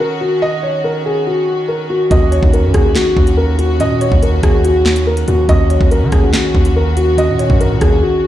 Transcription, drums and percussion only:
0, 0, Header, 1, 2, 480
1, 0, Start_track
1, 0, Key_signature, -6, "minor"
1, 0, Tempo, 422535
1, 477, Time_signature, 4, 2, 24, 8
1, 9396, End_track
2, 0, Start_track
2, 0, Title_t, "Drums"
2, 2396, Note_on_c, 9, 42, 77
2, 2397, Note_on_c, 9, 36, 119
2, 2510, Note_off_c, 9, 36, 0
2, 2510, Note_off_c, 9, 42, 0
2, 2637, Note_on_c, 9, 42, 73
2, 2751, Note_off_c, 9, 42, 0
2, 2756, Note_on_c, 9, 36, 100
2, 2870, Note_off_c, 9, 36, 0
2, 2879, Note_on_c, 9, 42, 79
2, 2993, Note_off_c, 9, 42, 0
2, 3114, Note_on_c, 9, 42, 69
2, 3117, Note_on_c, 9, 36, 101
2, 3117, Note_on_c, 9, 37, 101
2, 3228, Note_off_c, 9, 42, 0
2, 3231, Note_off_c, 9, 36, 0
2, 3231, Note_off_c, 9, 37, 0
2, 3356, Note_on_c, 9, 38, 116
2, 3358, Note_on_c, 9, 42, 89
2, 3360, Note_on_c, 9, 39, 92
2, 3470, Note_off_c, 9, 38, 0
2, 3471, Note_off_c, 9, 42, 0
2, 3474, Note_off_c, 9, 39, 0
2, 3597, Note_on_c, 9, 36, 99
2, 3710, Note_off_c, 9, 36, 0
2, 3715, Note_on_c, 9, 42, 88
2, 3829, Note_off_c, 9, 42, 0
2, 4076, Note_on_c, 9, 42, 78
2, 4190, Note_off_c, 9, 42, 0
2, 4317, Note_on_c, 9, 42, 75
2, 4430, Note_off_c, 9, 42, 0
2, 4557, Note_on_c, 9, 42, 75
2, 4671, Note_off_c, 9, 42, 0
2, 4677, Note_on_c, 9, 36, 98
2, 4790, Note_off_c, 9, 36, 0
2, 4800, Note_on_c, 9, 42, 79
2, 4914, Note_off_c, 9, 42, 0
2, 5034, Note_on_c, 9, 42, 70
2, 5037, Note_on_c, 9, 36, 100
2, 5037, Note_on_c, 9, 37, 108
2, 5148, Note_off_c, 9, 42, 0
2, 5151, Note_off_c, 9, 36, 0
2, 5151, Note_off_c, 9, 37, 0
2, 5277, Note_on_c, 9, 42, 90
2, 5391, Note_off_c, 9, 42, 0
2, 5517, Note_on_c, 9, 38, 117
2, 5521, Note_on_c, 9, 39, 94
2, 5631, Note_off_c, 9, 38, 0
2, 5635, Note_off_c, 9, 39, 0
2, 5635, Note_on_c, 9, 42, 89
2, 5749, Note_off_c, 9, 42, 0
2, 5873, Note_on_c, 9, 42, 76
2, 5987, Note_off_c, 9, 42, 0
2, 5995, Note_on_c, 9, 42, 76
2, 6108, Note_off_c, 9, 42, 0
2, 6235, Note_on_c, 9, 42, 77
2, 6236, Note_on_c, 9, 36, 115
2, 6349, Note_off_c, 9, 42, 0
2, 6350, Note_off_c, 9, 36, 0
2, 6477, Note_on_c, 9, 42, 73
2, 6591, Note_off_c, 9, 42, 0
2, 6596, Note_on_c, 9, 36, 99
2, 6709, Note_off_c, 9, 36, 0
2, 6718, Note_on_c, 9, 42, 78
2, 6832, Note_off_c, 9, 42, 0
2, 6953, Note_on_c, 9, 42, 73
2, 6956, Note_on_c, 9, 37, 104
2, 6957, Note_on_c, 9, 36, 101
2, 7067, Note_off_c, 9, 42, 0
2, 7070, Note_off_c, 9, 36, 0
2, 7070, Note_off_c, 9, 37, 0
2, 7196, Note_on_c, 9, 38, 118
2, 7197, Note_on_c, 9, 42, 90
2, 7200, Note_on_c, 9, 39, 93
2, 7310, Note_off_c, 9, 38, 0
2, 7311, Note_off_c, 9, 42, 0
2, 7314, Note_off_c, 9, 39, 0
2, 7436, Note_on_c, 9, 36, 98
2, 7550, Note_off_c, 9, 36, 0
2, 7555, Note_on_c, 9, 42, 89
2, 7669, Note_off_c, 9, 42, 0
2, 7916, Note_on_c, 9, 42, 78
2, 8030, Note_off_c, 9, 42, 0
2, 8158, Note_on_c, 9, 42, 78
2, 8271, Note_off_c, 9, 42, 0
2, 8399, Note_on_c, 9, 42, 76
2, 8513, Note_off_c, 9, 42, 0
2, 8517, Note_on_c, 9, 36, 94
2, 8631, Note_off_c, 9, 36, 0
2, 8640, Note_on_c, 9, 42, 80
2, 8754, Note_off_c, 9, 42, 0
2, 8875, Note_on_c, 9, 42, 71
2, 8878, Note_on_c, 9, 36, 99
2, 8878, Note_on_c, 9, 37, 104
2, 8988, Note_off_c, 9, 42, 0
2, 8991, Note_off_c, 9, 36, 0
2, 8991, Note_off_c, 9, 37, 0
2, 9396, End_track
0, 0, End_of_file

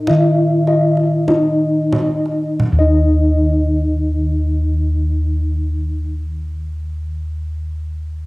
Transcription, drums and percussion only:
0, 0, Header, 1, 2, 480
1, 0, Start_track
1, 0, Tempo, 1195219
1, 516, Tempo, 1315789
1, 995, Time_signature, 4, 2, 24, 8
1, 996, Tempo, 1379310
1, 2967, End_track
2, 0, Start_track
2, 0, Title_t, "Kendang"
2, 29, Note_on_c, 9, 64, 71
2, 69, Note_off_c, 9, 64, 0
2, 270, Note_on_c, 9, 62, 25
2, 310, Note_off_c, 9, 62, 0
2, 390, Note_on_c, 9, 62, 18
2, 430, Note_off_c, 9, 62, 0
2, 513, Note_on_c, 9, 62, 16
2, 513, Note_on_c, 9, 63, 45
2, 513, Note_on_c, 9, 64, 50
2, 550, Note_off_c, 9, 62, 0
2, 550, Note_off_c, 9, 63, 0
2, 550, Note_off_c, 9, 64, 0
2, 749, Note_on_c, 9, 62, 23
2, 749, Note_on_c, 9, 63, 49
2, 749, Note_on_c, 9, 64, 59
2, 786, Note_off_c, 9, 62, 0
2, 786, Note_off_c, 9, 63, 0
2, 786, Note_off_c, 9, 64, 0
2, 870, Note_on_c, 9, 62, 19
2, 907, Note_off_c, 9, 62, 0
2, 995, Note_on_c, 9, 64, 83
2, 1029, Note_off_c, 9, 64, 0
2, 2967, End_track
0, 0, End_of_file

